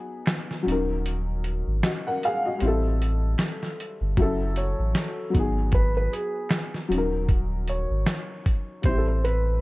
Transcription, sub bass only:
0.67 1.63 D#1 loud
1.67 1.82 G#1 loud
2.62 3.35 A1 loud
4.01 4.16 G1 loud
4.18 4.75 F#1 loud
4.79 4.94 A1 medium
5.35 6.08 G#1 loud
6.90 7.86 D#1 loud
7.90 8.06 G#1 medium
8.84 9.58 A1 loud

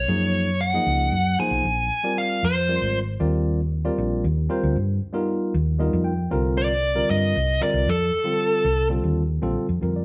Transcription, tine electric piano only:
0.09 0.48 F3 medium
0.09 0.48 A#3 medium
0.09 0.48 D#4 medium
0.09 0.48 G#4 medium
0.09 0.48 C#5 medium
0.73 1.13 F3 medium
0.73 1.13 A#3 medium
0.73 1.13 D#4 medium
0.73 1.14 G#4 medium
0.73 1.14 D#5 medium
1.39 1.65 F3 medium
1.39 1.65 A#3 medium
1.39 1.65 D#4 medium
1.39 1.65 G#4 medium
1.39 1.65 C5 medium
2.03 2.43 G3 medium
2.03 2.43 C4 medium
2.03 2.43 F4 medium
2.03 2.43 A#4 medium
2.03 2.43 D5 medium
2.68 3.00 G3 medium
2.68 3.00 C4 medium
2.68 3.00 F4 medium
2.68 3.00 A#4 medium
2.68 3.00 D5 medium
3.20 3.59 G3 medium
3.20 3.60 C4 medium
3.20 3.59 F4 medium
3.20 3.60 A#4 medium
3.20 3.60 D5 medium
3.85 4.24 G3 medium
3.85 4.24 C4 medium
3.85 4.24 F4 medium
3.85 4.25 A#4 medium
3.85 4.25 D5 medium
4.49 4.76 G3 medium
4.49 4.75 C4 medium
4.49 4.76 F4 medium
4.49 4.76 A#4 medium
4.49 4.76 C5 loud
5.13 5.53 G3 medium
5.13 5.53 B3 medium
5.13 5.53 D#4 medium
5.13 5.54 F4 medium
5.13 5.54 A#4 medium
5.79 6.11 G3 medium
5.79 6.11 B3 medium
5.79 6.11 D#4 medium
5.79 6.11 F4 medium
5.79 6.11 A#4 medium
5.79 6.04 D#5 medium
6.04 6.29 G5 medium
6.30 6.70 D3 medium
6.30 6.70 G3 medium
6.30 6.70 C4 medium
6.30 6.71 F4 medium
6.30 6.71 A#4 loud
6.95 7.35 D3 medium
6.95 7.35 G3 medium
6.95 7.35 C4 medium
6.95 7.35 F4 medium
6.95 7.35 A#4 medium
7.60 7.86 D3 medium
7.60 7.87 G3 medium
7.60 7.86 C4 medium
7.60 7.87 F4 medium
7.60 7.87 A#4 medium
8.24 8.64 D3 medium
8.24 8.64 G3 medium
8.24 8.65 C4 medium
8.24 8.64 F4 medium
8.24 8.65 A4 medium
8.90 9.21 D3 medium
8.90 9.22 G3 medium
8.90 9.21 C4 medium
8.90 9.22 F4 medium
8.90 9.22 A4 medium
9.42 9.66 D3 medium
9.42 9.66 G3 medium
9.42 9.66 C4 medium
9.42 9.66 F4 medium
9.42 9.66 A4 medium
9.81 10.05 D3 medium
9.81 10.05 G3 medium
9.81 10.05 C4 medium
9.81 10.05 F4 medium
9.81 10.05 A#4 medium
9.96 10.05 D5 medium

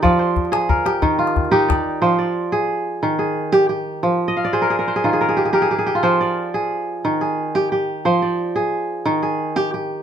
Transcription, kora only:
0.00 1.08 F3 medium
0.00 0.71 F4 medium
0.00 0.58 G4 medium
0.00 1.08 D5 medium
0.19 1.38 C5 medium
0.52 0.91 G#4 medium
0.69 1.96 A#4 medium
0.85 1.51 G4 medium
1.02 2.08 D#3 medium
1.19 2.70 F4 medium
1.51 2.25 D#4 medium
1.51 2.58 G4 medium
1.68 2.18 D5 medium
2.02 3.08 F3 medium
2.02 3.20 C5 medium
2.19 3.09 D5 soft
2.52 3.18 G#4 medium
3.03 4.09 D#3 medium
3.19 3.75 G#4 medium
3.52 3.69 G4 medium
3.69 4.59 G4 medium
4.03 5.09 F3 medium
4.28 4.50 D#5 medium
4.37 5.37 F5 medium
4.44 5.10 D5 medium
4.53 4.70 G#4 medium
4.53 4.87 C5 medium
4.62 4.78 A#4 medium
4.70 4.95 G#4 medium
4.79 5.20 A#4 medium
4.88 6.03 C5 medium
4.96 5.13 G#4 medium
5.04 6.10 D#3 medium
5.04 5.95 F4 medium
5.13 5.28 G#4 medium
5.21 5.53 A#4 medium
5.29 5.45 G#4 medium
5.37 5.52 G4 medium
5.45 5.61 G#4 medium
5.53 5.71 G4 medium
5.53 6.81 A#4 medium
5.62 5.78 G#4 medium
5.71 5.86 G4 medium
5.78 6.54 G#4 medium
5.87 6.60 G4 medium
5.95 7.46 F4 medium
6.03 7.10 F3 medium
6.03 7.22 C5 medium
6.21 7.11 D5 medium
6.54 7.21 G#4 medium
7.05 8.11 D#3 medium
7.21 7.78 G#4 medium
7.55 7.71 G4 medium
7.72 8.62 G4 medium
8.05 9.11 F3 medium
8.05 9.24 C5 medium
8.22 9.12 D5 soft
8.56 9.22 G#4 medium
9.05 10.03 D#3 medium
9.23 9.80 G#4 medium
9.56 9.73 G4 medium
9.74 10.03 G4 soft

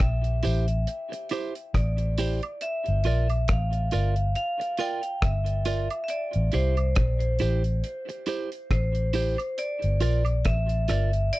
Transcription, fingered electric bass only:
0.01 0.41 A#1 medium
0.45 0.85 A1 medium
1.75 2.39 A1 medium
2.88 3.07 G1 medium
3.07 3.46 A#1 loud
3.50 3.90 A1 medium
3.94 4.34 G1 medium
5.23 5.87 G1 medium
6.36 6.53 A1 medium
6.54 6.94 C2 medium
6.98 7.38 A#1 medium
7.42 7.81 A1 medium
8.72 9.36 A1 medium
9.84 10.03 G1 medium
10.03 10.43 A#1 loud
10.46 10.86 A1 medium
10.90 11.30 G1 medium

